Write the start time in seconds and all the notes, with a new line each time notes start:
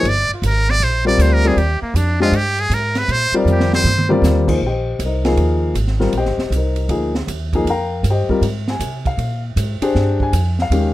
0.03 G1, ride
0.08 D5
0.29 muted upright bass stroke
0.33 F4
0.42 G#1, hi-hat pedal, ride
0.46 A#4
0.69 D5, snare
0.80 A#1 C5, ride
1.05 G3 C4 F4 A#4 D5
1.18 D2 C5, hi-hat pedal, ride
1.33 A#4
1.44 G3 C4 F4 G#4 A#4 D5, ride
1.56 D#2 G4, ride
1.82 A#3, muted upright bass stroke
1.94 F2 D4, hi-hat pedal, ride
2.20 G#3 D4 F4 G4 C5 D#5
2.32 G2, ride
2.36 G4
2.58 G#4, ride
2.70 G#2, hi-hat pedal, ride
2.74 A#4
2.95 B4, snare, ride
3.08 A#2 C5, ride
3.32 G3 C4 F4 A#4 D5, muted upright bass stroke
3.37 D#4
3.45 F2, hi-hat pedal, mid tom
3.51 G4
3.60 snare
3.73 C5, snare
3.84 G2, mid tom
3.98 mid tom
4.09 G3 C4 F4 A#4 D5, mid tom
4.22 D#2, snare, hi-hat pedal
4.47 F3 A#3 D#4 G#4 C5, kick, crash
4.61 A#1
4.66 G4 C5 D#5 G5
4.99 C2, hi-hat pedal, ride
5.05 D#4 A#4 C5 D#5
5.24 F3 A#3 D#4 G#4, snare, ride
5.37 D#2, ride
5.74 G#1, hi-hat pedal, ride
5.87 snare
6.00 G3 C4 F4 A#4, snare
6.13 A#1, ride
6.17 G4 C5 D#5 G5
6.25 G#1, snare
6.37 F1, snare
6.50 C2, hi-hat pedal, ride
6.56 D#4 A#4 C5 D#5
6.76 ride
6.89 D2 F3 A#3 D#4 G#4, ride
7.15 snare
7.27 D#2, hi-hat pedal, ride
7.53 F3 A#3 D#4 G#4, kick, ride
7.65 F2, ride
7.70 A#4 F5 G5 A#5
8.03 G2, hi-hat pedal, ride
8.10 G4 C5 D#5 G5
8.28 G3 C4 F4 A#4, muted upright bass stroke, kick
8.41 G#2, ride
8.68 G#5, snare
8.80 C3, hi-hat pedal, ride
9.05 F5, kick, ride
9.18 A#2, ride
9.56 G#2, hi-hat pedal, ride
9.81 D4 G4 G#4 C5, muted upright bass stroke, ride
9.95 G2, snare
10.20 G#5, kick
10.33 F2, hi-hat pedal, ride
10.59 F5, snare
10.70 D#2 D#3 G#3 C#4 G4, ride